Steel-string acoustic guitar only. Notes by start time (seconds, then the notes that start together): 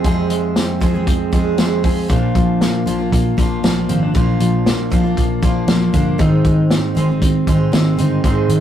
0.04 F2 C3 F3 G#3 C4 G#4
0.80 F3 G#3 C4 G#4
0.94 F3 G#3 C4 G#4
1.32 F3 G#3 C4 G#4
1.58 F3 G#3 C4 G#4
1.83 F3 G#3 C4 G#4
2.08 A#2 F3 A#3 D4 F4
2.86 F3 A#3 D4 F4
2.98 A#3 D4 F4
3.37 F3 A#3 D4 F4
3.63 F3 A#3 D4 F4
3.89 F3 A#3 D4 F4
4.14 A#2 F3 A#3 D4 F4
4.90 F3 A#3 D4 F4
5.03 A#3 D4 F4
5.42 F3 A#3 D4 F4
5.67 F3 A#3 D4 F4
5.93 F3 A#3 D4 F4
6.18 G#2 D#3 G#3 C4 D#4
6.95 D#3 G#3 C4 D#4
7.08 G#3 C4 D#4
7.47 D#3 G#3 C4 D#4
7.72 D#3 G#3 C4 D#4
7.97 D#3 G#3 C4 D#4
8.24 G#2 D#3 G#3 C4 D#4